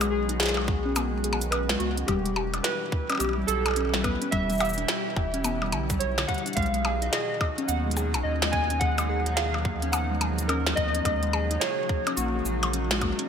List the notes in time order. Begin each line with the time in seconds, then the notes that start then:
Already playing: B1 D#3 F#3 G#3 B3 F#4
0.01 G#3, closed hi-hat, percussion blips, shaker
0.10 G#4
0.29 D#4, closed hi-hat
0.40 G#4, snare, closed hi-hat
0.43 snare
0.46 snare
0.49 snare
0.54 snare, percussion blips
0.68 kick
0.85 C#4
0.96 B3, closed hi-hat, percussion blips, shaker
1.13 G#3
1.24 G#4, closed hi-hat
1.33 percussion blips
1.41 closed hi-hat, shaker
1.51 C#4 B4, closed hi-hat, percussion blips
1.69 G#3, snare
1.79 C#2 B3 F#4, closed hi-hat
1.97 C#4, closed hi-hat
2.07 E1 B2 E3 G3 E4 G4, kick, closed hi-hat, percussion blips
2.26 G3, closed hi-hat
2.36 G4, percussion blips
2.54 D4, closed hi-hat, percussion blips
2.63 G4 B4, snare, closed hi-hat
2.92 kick
3.10 C#4, closed hi-hat, percussion blips
3.12 percussion blips
3.15 percussion blips
3.17 G4, closed hi-hat, percussion blips
3.20 B1 B3, percussion blips, shaker
3.24 percussion blips
3.29 percussion blips
3.33 percussion blips
3.38 G3
3.47 B1 G4 A4, closed hi-hat, shaker
3.66 closed hi-hat, percussion blips
3.68 percussion blips
3.71 percussion blips
3.74 closed hi-hat, percussion blips
3.76 C#4, percussion blips
3.81 percussion blips
3.85 percussion blips
3.89 percussion blips
3.94 G3, snare
4.03 B3 B4, kick, closed hi-hat, percussion blips
4.22 C#4, closed hi-hat
4.31 E1 G3 E5, kick, closed hi-hat
4.50 G3, closed hi-hat, shaker
4.52 shaker
4.55 shaker
4.58 G4 E5, closed hi-hat, percussion blips, shaker
4.60 shaker
4.65 shaker
4.69 shaker
4.73 shaker
4.78 D4, closed hi-hat
4.88 G4, snare, closed hi-hat
5.16 E1, kick, percussion blips
5.34 C#4, closed hi-hat
5.44 B3, closed hi-hat, percussion blips, shaker
5.62 G3, percussion blips
5.72 B1 D3, closed hi-hat, percussion blips
5.90 G3, kick, closed hi-hat, shaker
5.99 G3 C#5, closed hi-hat
6.18 D3, snare, percussion blips
6.27 G3 F#5, kick, closed hi-hat
6.34 closed hi-hat
6.38 closed hi-hat
6.46 D4, closed hi-hat
6.53 G#3 F5, closed hi-hat
6.57 B1 D#3 F#3 D#4 F#4, kick, closed hi-hat
6.62 closed hi-hat
6.66 closed hi-hat
6.74 G#3, closed hi-hat
6.85 G#4, percussion blips
7.02 D#4, closed hi-hat
7.11 G#4 D#5, snare, closed hi-hat
7.41 kick, percussion blips
7.58 C#4, closed hi-hat
7.67 D#2 B3 F#5, closed hi-hat, shaker
7.86 G#3
7.91 closed hi-hat
7.97 G#4, percussion blips, shaker
8.14 B1, closed hi-hat, percussion blips
8.23 D#2 C#4 D#5
8.42 G#3, snare, percussion blips
8.51 B3 G#5, kick, closed hi-hat
8.70 C#4, closed hi-hat
8.79 F3 G#3 F#5, kick, closed hi-hat
8.98 G#3, closed hi-hat, percussion blips, shaker
9.09 G#4
9.26 D#4, closed hi-hat
9.36 G#4 F5, snare, closed hi-hat
9.54 percussion blips
9.65 kick
9.82 C#4, closed hi-hat
9.92 B3 F#5, closed hi-hat, percussion blips, shaker
10.10 G#3
10.21 G#4, closed hi-hat, percussion blips
10.38 closed hi-hat, shaker
10.48 C#4 A#4, closed hi-hat, percussion blips
10.66 G#3, snare
10.76 D#2 B3 D#5, kick, closed hi-hat
10.95 C#4, closed hi-hat
11.05 D#2 C#3 G#3 A#3 F#4, kick, closed hi-hat, percussion blips
11.23 G#3, closed hi-hat
11.33 G#4, percussion blips
11.51 D#4, closed hi-hat
11.60 G#4 C#5, snare, closed hi-hat
11.89 kick
12.07 C#4, closed hi-hat, percussion blips
12.16 A#1 A#3 F#4, closed hi-hat, shaker
12.35 G#3
12.45 A#1 G#4, shaker
12.63 closed hi-hat, percussion blips
12.73 C#4, closed hi-hat
12.91 G#3, snare
13.01 A#3, kick, closed hi-hat, percussion blips
13.19 C#4, closed hi-hat